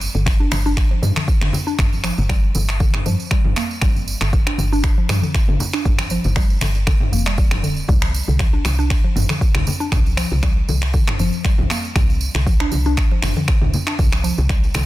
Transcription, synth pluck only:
0, 0, Header, 1, 2, 480
1, 0, Start_track
1, 0, Tempo, 508475
1, 1687, Time_signature, 4, 2, 24, 8
1, 14026, End_track
2, 0, Start_track
2, 0, Title_t, "Synth pluck"
2, 0, Program_c, 0, 84
2, 137, Note_on_c, 0, 50, 76
2, 236, Note_off_c, 0, 50, 0
2, 376, Note_on_c, 0, 62, 74
2, 476, Note_off_c, 0, 62, 0
2, 620, Note_on_c, 0, 62, 101
2, 678, Note_off_c, 0, 62, 0
2, 857, Note_on_c, 0, 53, 76
2, 956, Note_off_c, 0, 53, 0
2, 1098, Note_on_c, 0, 50, 77
2, 1197, Note_off_c, 0, 50, 0
2, 1334, Note_on_c, 0, 50, 74
2, 1395, Note_off_c, 0, 50, 0
2, 1576, Note_on_c, 0, 62, 100
2, 1636, Note_off_c, 0, 62, 0
2, 1926, Note_on_c, 0, 53, 102
2, 2043, Note_off_c, 0, 53, 0
2, 2169, Note_on_c, 0, 55, 83
2, 2284, Note_off_c, 0, 55, 0
2, 2409, Note_on_c, 0, 50, 77
2, 2477, Note_off_c, 0, 50, 0
2, 2648, Note_on_c, 0, 50, 100
2, 2764, Note_off_c, 0, 50, 0
2, 2890, Note_on_c, 0, 53, 102
2, 3004, Note_off_c, 0, 53, 0
2, 3132, Note_on_c, 0, 55, 82
2, 3245, Note_off_c, 0, 55, 0
2, 3368, Note_on_c, 0, 58, 77
2, 3437, Note_off_c, 0, 58, 0
2, 3607, Note_on_c, 0, 55, 82
2, 3677, Note_off_c, 0, 55, 0
2, 3975, Note_on_c, 0, 50, 76
2, 4076, Note_off_c, 0, 50, 0
2, 4217, Note_on_c, 0, 62, 78
2, 4317, Note_off_c, 0, 62, 0
2, 4461, Note_on_c, 0, 62, 99
2, 4518, Note_off_c, 0, 62, 0
2, 4699, Note_on_c, 0, 53, 78
2, 4797, Note_off_c, 0, 53, 0
2, 4941, Note_on_c, 0, 50, 77
2, 5038, Note_off_c, 0, 50, 0
2, 5180, Note_on_c, 0, 50, 76
2, 5238, Note_off_c, 0, 50, 0
2, 5415, Note_on_c, 0, 62, 99
2, 5475, Note_off_c, 0, 62, 0
2, 5768, Note_on_c, 0, 53, 102
2, 5884, Note_off_c, 0, 53, 0
2, 6010, Note_on_c, 0, 55, 78
2, 6124, Note_off_c, 0, 55, 0
2, 6247, Note_on_c, 0, 50, 77
2, 6317, Note_off_c, 0, 50, 0
2, 6485, Note_on_c, 0, 50, 102
2, 6602, Note_off_c, 0, 50, 0
2, 6727, Note_on_c, 0, 58, 78
2, 6796, Note_off_c, 0, 58, 0
2, 6853, Note_on_c, 0, 55, 79
2, 6954, Note_off_c, 0, 55, 0
2, 6966, Note_on_c, 0, 55, 81
2, 7082, Note_off_c, 0, 55, 0
2, 7207, Note_on_c, 0, 50, 77
2, 7329, Note_off_c, 0, 50, 0
2, 7449, Note_on_c, 0, 55, 83
2, 7517, Note_off_c, 0, 55, 0
2, 7815, Note_on_c, 0, 50, 75
2, 7915, Note_off_c, 0, 50, 0
2, 8055, Note_on_c, 0, 62, 74
2, 8155, Note_off_c, 0, 62, 0
2, 8295, Note_on_c, 0, 62, 100
2, 8355, Note_off_c, 0, 62, 0
2, 8536, Note_on_c, 0, 53, 75
2, 8636, Note_off_c, 0, 53, 0
2, 8774, Note_on_c, 0, 50, 77
2, 8875, Note_off_c, 0, 50, 0
2, 9014, Note_on_c, 0, 50, 78
2, 9075, Note_off_c, 0, 50, 0
2, 9254, Note_on_c, 0, 62, 98
2, 9315, Note_off_c, 0, 62, 0
2, 9601, Note_on_c, 0, 53, 103
2, 9720, Note_off_c, 0, 53, 0
2, 9845, Note_on_c, 0, 55, 82
2, 9962, Note_off_c, 0, 55, 0
2, 10085, Note_on_c, 0, 50, 76
2, 10156, Note_off_c, 0, 50, 0
2, 10322, Note_on_c, 0, 50, 104
2, 10441, Note_off_c, 0, 50, 0
2, 10568, Note_on_c, 0, 53, 101
2, 10683, Note_off_c, 0, 53, 0
2, 10806, Note_on_c, 0, 55, 78
2, 10923, Note_off_c, 0, 55, 0
2, 11049, Note_on_c, 0, 58, 77
2, 11118, Note_off_c, 0, 58, 0
2, 11289, Note_on_c, 0, 55, 82
2, 11358, Note_off_c, 0, 55, 0
2, 11658, Note_on_c, 0, 50, 75
2, 11757, Note_off_c, 0, 50, 0
2, 11902, Note_on_c, 0, 62, 78
2, 11999, Note_off_c, 0, 62, 0
2, 12139, Note_on_c, 0, 62, 102
2, 12197, Note_off_c, 0, 62, 0
2, 12380, Note_on_c, 0, 53, 76
2, 12478, Note_off_c, 0, 53, 0
2, 12618, Note_on_c, 0, 50, 78
2, 12717, Note_off_c, 0, 50, 0
2, 12853, Note_on_c, 0, 50, 75
2, 12914, Note_off_c, 0, 50, 0
2, 13092, Note_on_c, 0, 62, 102
2, 13154, Note_off_c, 0, 62, 0
2, 13442, Note_on_c, 0, 53, 102
2, 13560, Note_off_c, 0, 53, 0
2, 13684, Note_on_c, 0, 55, 81
2, 13801, Note_off_c, 0, 55, 0
2, 13921, Note_on_c, 0, 50, 78
2, 13993, Note_off_c, 0, 50, 0
2, 14026, End_track
0, 0, End_of_file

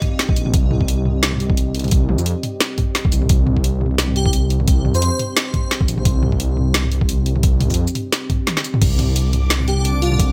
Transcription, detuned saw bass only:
0, 0, Header, 1, 2, 480
1, 0, Start_track
1, 0, Key_signature, -3, "minor"
1, 0, Tempo, 344828
1, 748, Time_signature, 4, 2, 24, 8
1, 14368, End_track
2, 0, Start_track
2, 0, Title_t, "Detuned saw bass"
2, 0, Program_c, 0, 39
2, 503, Note_on_c, 0, 34, 106
2, 729, Note_off_c, 0, 34, 0
2, 747, Note_on_c, 0, 36, 99
2, 1934, Note_off_c, 0, 36, 0
2, 1948, Note_on_c, 0, 36, 93
2, 2171, Note_off_c, 0, 36, 0
2, 2189, Note_on_c, 0, 36, 102
2, 2655, Note_off_c, 0, 36, 0
2, 2667, Note_on_c, 0, 36, 103
2, 3025, Note_off_c, 0, 36, 0
2, 3037, Note_on_c, 0, 41, 101
2, 3258, Note_off_c, 0, 41, 0
2, 4348, Note_on_c, 0, 36, 97
2, 4571, Note_off_c, 0, 36, 0
2, 4590, Note_on_c, 0, 36, 100
2, 5775, Note_off_c, 0, 36, 0
2, 5787, Note_on_c, 0, 36, 90
2, 6011, Note_off_c, 0, 36, 0
2, 6027, Note_on_c, 0, 36, 100
2, 6494, Note_off_c, 0, 36, 0
2, 6509, Note_on_c, 0, 36, 101
2, 6866, Note_off_c, 0, 36, 0
2, 6882, Note_on_c, 0, 41, 100
2, 7101, Note_off_c, 0, 41, 0
2, 8186, Note_on_c, 0, 34, 105
2, 8410, Note_off_c, 0, 34, 0
2, 8426, Note_on_c, 0, 36, 100
2, 9613, Note_off_c, 0, 36, 0
2, 9623, Note_on_c, 0, 36, 91
2, 9848, Note_off_c, 0, 36, 0
2, 9862, Note_on_c, 0, 36, 102
2, 10331, Note_off_c, 0, 36, 0
2, 10346, Note_on_c, 0, 36, 100
2, 10704, Note_off_c, 0, 36, 0
2, 10722, Note_on_c, 0, 41, 103
2, 10941, Note_off_c, 0, 41, 0
2, 12269, Note_on_c, 0, 36, 98
2, 13455, Note_off_c, 0, 36, 0
2, 13462, Note_on_c, 0, 36, 94
2, 13688, Note_off_c, 0, 36, 0
2, 13704, Note_on_c, 0, 36, 105
2, 14172, Note_off_c, 0, 36, 0
2, 14187, Note_on_c, 0, 36, 100
2, 14368, Note_off_c, 0, 36, 0
2, 14368, End_track
0, 0, End_of_file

